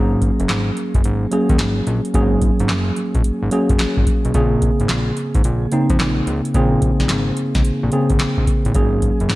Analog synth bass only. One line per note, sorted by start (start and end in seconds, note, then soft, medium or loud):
0.00 0.31 G#1 loud
0.40 0.47 F#1 medium
0.49 0.72 G#1 medium
0.95 1.02 F#1 loud
1.05 1.27 G#1 medium
1.50 1.57 D#2 loud
1.60 1.82 G#1 medium
1.87 2.01 A#1 medium
2.14 2.51 G#1 loud
2.60 2.71 G#1 medium
2.69 2.91 F#1 loud
3.15 3.22 A#1 medium
3.25 3.32 G#1 soft
3.42 3.50 G#1 medium
3.70 3.78 F#1 medium
3.80 3.87 G#1 soft
3.97 4.05 G#1 medium
4.25 4.33 B1 medium
4.34 4.71 A#1 loud
4.80 4.88 G#1 medium
4.90 5.12 A#1 medium
5.35 5.43 G#1 loud
5.45 5.67 A#1 medium
5.90 5.98 F2 loud
6.00 6.22 A#1 medium
6.27 6.42 C#2 loud
6.55 6.91 A#1 loud
7.00 7.08 A#1 loud
7.10 7.32 G#1 loud
7.55 7.63 C#2 medium
7.65 7.72 A#1 soft
7.83 7.91 A#1 medium
8.10 8.18 G#1 medium
8.20 8.27 A#1 soft
8.38 8.45 A#1 medium
8.65 8.73 A1 medium
8.75 9.12 G#1 loud
9.21 9.28 F#1 medium
9.30 9.35 G#1 loud